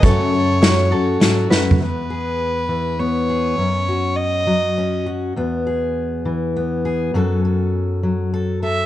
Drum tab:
HH |x-----x-----x-----|------------------|------------------|------------------|
SD |------o-----o--o--|------------------|------------------|------------------|
FT |-----------------o|------------------|------------------|------------------|
BD |o-----------------|------------------|------------------|------------------|

HH |------------------|
SD |------------------|
FT |------------------|
BD |------------------|